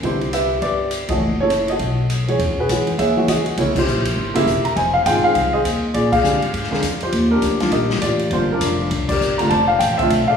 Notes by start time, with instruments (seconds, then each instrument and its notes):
0.03 upright bass C2, grand piano D3 B3 C4 E4 G4 C5, kick, ride
0.21 ride
0.33 grand piano G4 B4 E5, hi-hat pedal, ride
0.62 upright bass G1, grand piano G4 B4 D5, kick, ride
0.91 hi-hat pedal, ride
1.09 upright bass G1, grand piano E3 A3 C#4 F#4 A4 D#5, kick, ride
1.21 upright bass F#1
1.40 grand piano E4 A4 C#5
1.50 hi-hat pedal, ride
1.68 grand piano F#4 A4 D#5, ride
1.79 upright bass B1, kick, ride
2.10 hi-hat pedal, ride
2.28 grand piano E3 G#3 C#4 F#4 G#4 C#5, ride
2.39 upright bass E2, kick, ride
2.49 upright bass C#2
2.58 upright bass B1, grand piano F#4 G#4 B4
2.69 upright bass F#2, grand piano E3 G#3 C#4 F#4, kick, hi-hat pedal, ride
2.87 ride
2.98 upright bass D#2, grand piano G#4 C#5 E5, kick, ride
3.16 grand piano E3 G#3 C#4 F#4
3.28 upright bass C#2, grand piano F#4 G#4 D#5, kick, hi-hat pedal, ride
3.46 muted upright bass stroke, ride
3.57 upright bass C2, grand piano C#3 A#3 C4 E4 A#4 C#5, kick, ride
3.75 grand piano E4 G4 C5, kick, crash
3.87 upright bass A#1, hi-hat pedal
4.05 ride
4.17 upright bass G1, kick
4.34 grand piano C#3 A#3 C4 E4 G4 A#4 E5, ride
4.46 upright bass E1, kick, hi-hat pedal
4.65 grand piano A#5, muted upright bass stroke, ride
4.76 upright bass F1, grand piano C5 D#5 G#5, kick, ride
4.94 grand piano F5
5.06 upright bass G#1, grand piano D#3 G#3 C4 F4 G5, kick, hi-hat pedal, ride
5.23 grand piano G#4 C5 F5, muted upright bass stroke
5.35 upright bass C2, kick, ride
5.53 grand piano G#4 C5 D#5
5.65 upright bass D#2, kick, hi-hat pedal, ride
5.94 upright bass A#2, grand piano F4 G#4 D5, kick, ride
6.12 grand piano G#4 D5 F5, kick, crash
6.23 upright bass G2, grand piano D3 G#3 C4 G4, hi-hat pedal
6.42 ride
6.53 upright bass G#2, kick, ride
6.63 snare
6.71 grand piano D3 G#3 C4 A#4, muted upright bass stroke, snare
6.82 upright bass F2, kick, hi-hat pedal, ride
7.00 grand piano F4 G4 C5, ride
7.12 upright bass D#2, kick, ride
7.31 grand piano D4 G4 A#4
7.42 upright bass D2, kick, hi-hat pedal, ride
7.60 grand piano D#3 G3 D4 F4, snare, ride
7.72 upright bass A#1, grand piano G4 A#4 D#5, kick, ride
7.90 snare
8.01 upright bass A1, grand piano F4 G4 D5, kick, hi-hat pedal, ride
8.19 ride
8.31 upright bass G1, grand piano D3 G3 A#3 F4 C5, kick, ride
8.52 grand piano D4 F4 A#4
8.61 upright bass F1, kick, hi-hat pedal, ride
8.91 upright bass C2, kick, ride
9.09 grand piano G4 A#4 D5, kick, crash
9.21 upright bass G1, hi-hat pedal
9.38 grand piano D3 A3 C4 F4 A#5, ride
9.49 upright bass F1, grand piano C5 D5 A5, kick, ride
9.68 grand piano F5
9.79 upright bass A1, grand piano G5, kick, hi-hat pedal, ride
9.97 grand piano D3 A3 C4 F4 A4 C5 E5, kick, ride
10.10 upright bass B1, kick, ride
10.27 grand piano A4 D5 F5, muted upright bass stroke